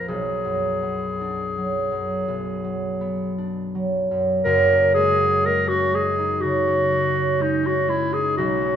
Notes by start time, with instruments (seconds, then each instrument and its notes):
Already playing: harp A#1 F2 A#3 C4 F4
0.08 harp B1, clarinet G#4
0.45 harp F#2
0.82 harp B3
1.21 harp D4
1.58 harp F#3
1.92 harp F#2
2.28 harp B1
2.64 harp F#3
3.01 harp B3
3.38 harp D4
3.75 harp F#3
4.11 harp F#2
4.44 harp F#1 F#2, clarinet A#4
4.72 harp C#4
4.94 harp G#3, clarinet G#4
5.21 harp C#4
5.46 harp G#3, clarinet A#4
5.68 harp C#4, clarinet F#4
5.94 harp G#3, clarinet G#4
6.18 harp D#4
6.41 harp C#3, clarinet F#4
6.67 harp C#4
6.92 harp G#3
7.15 harp C#4
7.39 harp G#3, clarinet D#4
7.63 harp C#4, clarinet F#4
7.88 harp G#3, clarinet E4
8.12 harp D#4, clarinet G#4
8.37 harp B1, clarinet F#4
8.62 harp C#4